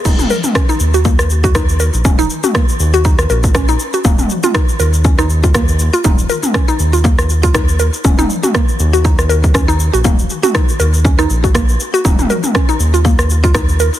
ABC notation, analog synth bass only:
X:1
M:4/4
L:1/16
Q:"Swing 16ths" 1/4=120
K:Ebm
V:1 name="Analog synth bass" clef=bass
E,,,2 z4 E,,8- E,, B,,, | E,,,2 z4 E,,4 B,,,4 z2 | E,,,2 z4 E,,8- E,, z | E,,,2 z4 E,,8- E,, z |
E,,,2 z4 E,,8- E,, B,,, | E,,,2 z4 E,,4 B,,,4 z2 | E,,,2 z4 E,,8- E,, z |]